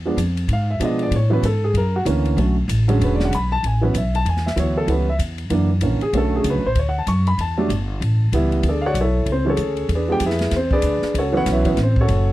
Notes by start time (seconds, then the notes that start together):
Already playing: E2
0.06 F3 G#3 B3 D4
0.17 F2, kick, hi-hat pedal, ride
0.37 ride
0.48 G#2, kick, ride
0.53 F5
0.70 E5
0.80 B2 F3 G#3 B3 D4, kick, hi-hat pedal, ride
0.85 D#5
0.99 D5, ride
1.11 A2, kick, ride
1.16 C#5
1.30 E3 F#3 B3 C#4 B4
1.42 G#2 A4, kick, hi-hat pedal, ride
1.64 G#4
1.74 F#2 A#4, kick, ride
1.96 F#4
2.05 D2 D3 E3 A#3 C#4, kick, hi-hat pedal, ride
2.25 ride
2.37 B1 D3 F#3 A3 C#4, kick, ride
2.68 A1, kick, hi-hat pedal, ride
2.88 D3 F#3 G#3 C#4, ride
2.99 E1, kick, ride
3.04 B4
3.15 D5
3.20 snare
3.25 F#5
3.31 B1 B5, kick, hi-hat pedal, ride
3.52 A5
3.63 A1 G#5, kick, ride
3.81 E3 F#3 B3 C#4 B4
3.94 B1 E5, kick, hi-hat pedal, ride
4.15 A5, ride
4.25 E2 G#5, kick, ride
4.37 snare
4.46 E5, snare
4.56 D2 E3 F#3 B3 E4 C#5, kick, hi-hat pedal, ride
4.78 A4
4.87 C#2 E3 G3 B3 C#4, kick, ride
4.92 B4
5.09 E5
5.19 E2, kick, hi-hat pedal, ride
5.38 ride
5.50 F#2 D3 E3 A#3 D4, kick, ride
5.81 A#1 D3 E3 A#3 C#4, kick, hi-hat pedal, ride
6.01 G#4, ride
6.13 B1 D3 F#3 A3 C#4, kick, ride
6.17 A4
6.36 G#4
6.44 C#2, kick, hi-hat pedal, ride
6.50 B4
6.55 B1
6.65 A1 C5
6.75 D2, kick, ride
6.79 C#5
6.89 F#5
6.98 A5
7.07 F#2 C#6, kick, hi-hat pedal, ride
7.27 B5, ride
7.38 E2 A5, kick, ride
7.58 F#3 G3 A3 D4
7.69 G1, kick, hi-hat pedal, ride
8.01 A1, kick, ride
8.32 C#2 E3 G3 B3 E4, kick, hi-hat pedal, ride
8.52 ride
8.63 D2, kick, ride
8.68 D4 G#4 A4 D5
8.82 F5
8.86 F#4 C#5 D5 F#5
8.94 B1, kick, hi-hat pedal, ride
9.01 E4 A4 C#5 E5
9.26 C#2, kick, ride
9.32 C4 C5
9.45 E3 F#3 G#3 C#4
9.49 C#4 G#4 A4 C#5
9.57 D2, kick, hi-hat pedal, ride
9.77 ride
9.89 E2, kick, ride
9.95 D4 G#4 B4 D5
10.08 F3 G#3 B3 D4 G4 G5
10.20 F2, kick, hi-hat pedal, ride
10.26 E4 G#4 B4 E5
10.30 snare
10.39 snare, ride
10.51 E2, kick, snare, ride
10.56 C4 C5
10.71 D4 G#4 B4 D5, kick
10.82 D2, kick, hi-hat pedal, ride
11.02 muted upright bass stroke, snare
11.14 C#2, kick, ride
11.18 C#4 F#4 A4 C#5
11.32 E3 F#3 B3 C#4
11.37 F#4 B4 C#5 F#5
11.46 B1, kick, snare, hi-hat pedal, ride
11.52 E4 B4 C#5 E5
11.65 E3 F#3 B3 C#4, kick, ride
11.76 A1, kick, snare, ride
11.83 C4 C5
11.96 kick
12.01 C#4 F#4 A4 C#5
12.08 F#1, kick, hi-hat pedal, ride